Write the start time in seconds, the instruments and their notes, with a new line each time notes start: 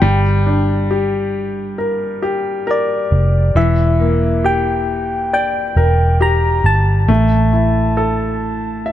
Already playing: soft synth lead G5
0.02 fingered electric bass G1, grand piano G3
0.46 grand piano D4
0.91 grand piano G4
1.78 grand piano A#4
2.22 fingered electric bass F1, grand piano G4
2.67 grand piano A#4, soft synth lead D5
3.12 fingered electric bass F1
3.55 fingered electric bass E1, grand piano E3, soft synth lead E5
4.00 grand piano A#3
4.44 grand piano G4, soft synth lead G5
5.33 grand piano D5, soft synth lead G5
5.76 fingered electric bass E1, grand piano A#4
6.21 grand piano G4, soft synth lead A#5
6.64 fingered electric bass G1, soft synth lead A5
7.08 fingered electric bass A1, grand piano A3
7.53 grand piano E4
7.97 grand piano A4
8.86 grand piano E5